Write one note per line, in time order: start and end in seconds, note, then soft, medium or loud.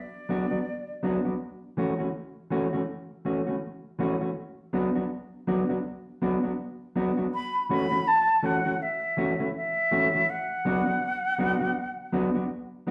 0.00 1.00 D5 medium
0.29 0.44 F#3 medium
0.29 0.45 B3 medium
0.29 0.45 D4 medium
0.29 0.45 F#4 loud
0.51 0.60 F#3 medium
0.51 0.59 B3 medium
0.51 0.59 D4 soft
0.51 0.59 F#4 medium
1.03 1.18 F#3 medium
1.03 1.19 B3 medium
1.03 1.19 D4 loud
1.03 1.19 F#4 medium
1.25 1.34 F#3 soft
1.25 1.34 B3 soft
1.25 1.33 D4 medium
1.25 1.33 F#4 medium
1.77 1.93 E3 medium
1.77 1.93 A3 medium
1.77 1.93 C#4 medium
1.77 1.93 F#4 medium
1.99 2.08 E3 medium
1.99 2.08 A3 medium
1.99 2.08 C#4 medium
1.99 2.07 F#4 medium
2.50 2.66 E3 medium
2.50 2.67 A3 medium
2.50 2.67 C#4 medium
2.50 2.67 F#4 loud
2.73 2.82 E3 medium
2.73 2.82 A3 medium
2.73 2.82 C#4 medium
2.73 2.81 F#4 medium
3.25 3.41 E3 medium
3.25 3.41 A3 medium
3.25 3.41 C#4 medium
3.25 3.41 F#4 medium
3.47 3.56 E3 medium
3.47 3.56 A3 medium
3.47 3.55 C#4 medium
3.47 3.55 F#4 medium
3.99 4.15 E3 medium
3.99 4.15 A3 medium
3.99 4.15 C#4 medium
3.99 4.15 F#4 medium
4.21 4.30 E3 soft
4.21 4.30 A3 medium
4.21 4.30 C#4 medium
4.21 4.29 F#4 medium
4.73 4.89 F#3 medium
4.73 4.89 B3 medium
4.73 4.89 D4 medium
4.73 4.90 F#4 medium
4.95 5.04 F#3 medium
4.95 5.04 B3 medium
4.95 5.04 D4 medium
4.95 5.04 F#4 medium
5.47 5.63 F#3 medium
5.47 5.63 B3 medium
5.47 5.63 D4 medium
5.47 5.63 F#4 medium
5.69 5.78 F#3 medium
5.69 5.78 B3 medium
5.69 5.78 D4 medium
5.69 5.78 F#4 medium
6.22 6.37 F#3 medium
6.22 6.37 B3 loud
6.22 6.38 D4 medium
6.22 6.38 F#4 medium
6.43 6.52 F#3 soft
6.43 6.52 B3 medium
6.43 6.52 D4 medium
6.43 6.52 F#4 medium
6.96 7.11 F#3 medium
6.96 7.11 B3 medium
6.96 7.12 D4 medium
6.96 7.12 F#4 medium
7.17 7.26 F#3 medium
7.17 7.26 B3 medium
7.17 7.26 D4 medium
7.17 7.26 F#4 medium
7.34 7.67 B5 loud
7.69 7.85 E3 medium
7.69 7.85 A3 medium
7.69 7.86 C#4 medium
7.69 7.86 F#4 loud
7.69 8.09 B5 loud
7.91 8.00 E3 medium
7.91 8.00 A3 medium
7.91 8.00 C#4 medium
7.91 8.00 F#4 medium
8.08 8.47 A5 loud
8.43 8.59 E3 loud
8.43 8.59 A3 loud
8.43 8.59 C#4 medium
8.43 8.59 F#4 medium
8.43 8.84 F#5 medium
8.65 8.74 E3 medium
8.65 8.74 A3 medium
8.65 8.74 C#4 medium
8.65 8.73 F#4 medium
8.82 9.55 E5 medium
9.17 9.33 E3 medium
9.17 9.33 A3 medium
9.17 9.33 C#4 medium
9.17 9.34 F#4 loud
9.39 9.48 E3 medium
9.39 9.48 A3 medium
9.39 9.48 C#4 medium
9.39 9.48 F#4 medium
9.56 10.31 E5 medium
9.91 10.07 E3 medium
9.91 10.07 A3 medium
9.91 10.08 C#4 medium
9.91 10.08 F#4 loud
10.13 10.23 E3 soft
10.13 10.22 A3 soft
10.13 10.22 C#4 medium
10.13 10.22 F#4 medium
10.30 12.51 F#5 loud
10.65 10.81 F#3 loud
10.65 10.81 B3 medium
10.65 10.81 D4 loud
10.65 10.81 F#4 loud
10.86 10.96 F#3 medium
10.86 10.95 B3 medium
10.86 10.95 D4 medium
10.86 10.95 F#4 medium
11.38 11.55 F#3 medium
11.38 11.55 B3 medium
11.38 11.55 D4 medium
11.38 11.55 F#4 medium
11.60 11.70 F#3 medium
11.60 11.70 B3 medium
11.60 11.69 D4 medium
11.60 11.69 F#4 medium
12.12 12.29 F#3 medium
12.12 12.29 B3 loud
12.12 12.29 D4 loud
12.12 12.29 F#4 loud
12.35 12.44 F#3 medium
12.35 12.44 B3 medium
12.35 12.44 D4 medium
12.35 12.43 F#4 medium
12.87 12.91 F#3 medium
12.87 12.91 B3 medium
12.87 12.91 D4 medium